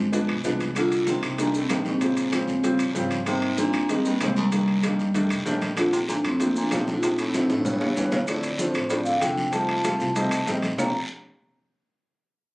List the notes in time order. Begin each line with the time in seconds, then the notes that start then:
Already playing: G1 D2 G#3
0.12 F3 G#3 B3 D4, high bongo, high conga, high timbale, long guiro, maracas
0.28 B1, high conga, high timbale, claves
0.44 C2 F3 G#3 B3 D4, high bongo, low bongo, high conga, short guiro, maracas
0.60 high bongo, high conga, high timbale, short guiro, maracas
0.75 D3 D#3 G3 A#3 D4 F4, high bongo, high conga, high timbale, long guiro, claves, maracas
0.92 high timbale, maracas
1.06 C3 D#3 G3 A#3 D4 D#4, high bongo, high conga, short guiro, maracas
1.22 C2, high bongo, high timbale, short guiro, claves, maracas
1.38 A#2 D#3 G3 A#3 D4, high bongo, high conga, high timbale, long guiro, maracas
1.54 A2 C4, high bongo, high conga, maracas
1.69 A#1 C3 D#3 G3 A#3 D4 D#4, high bongo, low bongo, high conga, high timbale, short guiro, claves, maracas
1.85 G#2 C4, high bongo, high conga, short guiro, maracas
2.01 C#3 F3 G#3 C4, high bongo, high conga, high timbale, long guiro, maracas
2.17 high conga, high timbale, maracas
2.32 C#3 F3 G#3 C4, high bongo, high conga, high timbale, short guiro, claves, maracas
2.48 D#2, high bongo, high conga, short guiro, maracas
2.63 C#3 F3 G3 C4, high bongo, high conga, high timbale, long guiro, maracas
2.79 A1, high conga, high timbale, claves, maracas
2.94 G#1 C#3 F3 G3 C4, high bongo, low bongo, high conga, short guiro, maracas
3.10 high bongo, high conga, high timbale, short guiro, maracas
3.26 C3 D#3 G3 A#3 C4 D#4, high bongo, high conga, high timbale, long guiro, claves, maracas
3.42 high conga, high timbale
3.57 A#2 D#3 G3 A#3 C4 D4, high bongo, high conga, short guiro, maracas
3.73 D#2, high bongo, high timbale, short guiro, claves, maracas
3.89 G#2 D#3 G3 A#3 C4 D#4, high bongo, high conga, high timbale, long guiro, maracas
4.05 G2 A#3, high bongo, high conga, maracas
4.20 C2 D#2 D#3 G3 G#3 A#3 C4, high bongo, low bongo, high conga, high timbale, low timbale, short guiro, claves, maracas
4.36 D#2 G3, high bongo, high conga, short guiro, maracas
4.52 D#3 G3 A#3 D4, high bongo, high timbale, long guiro, maracas
4.68 high conga, high timbale
4.83 D#3 G3 A#3 D4, high bongo, high conga, high timbale, short guiro, claves, maracas
4.99 F2, high bongo, high conga, short guiro, maracas
5.14 D#3 G3 A3 D4, high bongo, high timbale, long guiro, maracas
5.30 C2, high conga, high timbale, claves, maracas
5.46 A#1 D#3 G3 A3 D4, high bongo, low bongo, high conga, low timbale, short guiro, maracas
5.61 high bongo, high conga, high timbale, short guiro, maracas
5.77 D3 F3 A3 C4 D4 F4, high bongo, high conga, high timbale, long guiro, claves, maracas
5.93 C3 D#4, high conga, high timbale, maracas
6.08 A#2 F3 A3 C4 D4, high bongo, high conga, short guiro, maracas
6.24 F2 A2 C4, high bongo, high timbale, short guiro, claves, maracas
6.40 F2 F3 A3 A#3 C4 D4, high bongo, high conga, high timbale, long guiro, maracas
6.55 A#2 D4, high bongo, high conga, maracas
6.71 A#1 F3 A3 C4 D4, high bongo, low bongo, high conga, high timbale, low timbale, short guiro, claves, maracas
6.78 C3 D#4
6.87 high bongo, high conga, short guiro, maracas
6.93 D3 F4
7.03 C3 F3 A3 C4 D4 D#4, high bongo, high conga, high timbale, long guiro, maracas
7.18 A2 C4, high conga, high timbale, maracas
7.34 F3 A3 C4 D4, high bongo, high conga, high timbale, short guiro, claves, maracas
7.50 A1 A2 D4, high bongo, high conga, high timbale, short guiro, maracas
7.65 E3 G3 B3 C#4, low bongo, low conga, low timbale, long guiro, maracas
7.81 C#2, low bongo, low timbale, claves
7.96 D2 E3 G3 B3 C#4, low bongo, low timbale, short guiro, maracas
8.12 low bongo, low conga, low timbale, short guiro, maracas
8.27 A2 F3 A3 C4 D4 D5, high bongo, high conga, high timbale, long guiro, claves, maracas
8.43 high conga, high timbale, maracas
8.59 A2 F3 A3 C4 D4 C5, high bongo, high conga, short guiro, maracas
8.74 A1, high bongo, high timbale, short guiro, claves, maracas
8.89 A2 F3 A3 C4 D4 D5, high bongo, high conga, high timbale, long guiro, maracas
9.04 D3 F5, high bongo, high conga, maracas
9.19 F1 D3 F3 A3 C4 D4 G5, high bongo, low bongo, high conga, high timbale, short guiro, claves, maracas
9.37 high bongo, high conga, short guiro, maracas
9.51 F3 G3 A3 C4 D#4 A5, high bongo, high conga, high timbale, long guiro, maracas
9.69 high conga, high timbale
9.84 G3 A3 C4 F4, high bongo, high conga, high timbale, short guiro, claves, maracas
10.00 C2, high bongo, high conga, short guiro, maracas
10.15 G3 A3 C4 D#4, high bongo, high conga, high timbale, long guiro, maracas
10.31 C2, high conga, high timbale, claves, maracas
10.47 A#1 G3 A3 C4 D#4, high bongo, low bongo, high conga, short guiro, maracas
10.62 high bongo, high conga, high timbale, short guiro, maracas
10.78 A#1 F2 F3 A3 C4 D4 A#5, low bongo, low conga, low timbale, long guiro, claves, maracas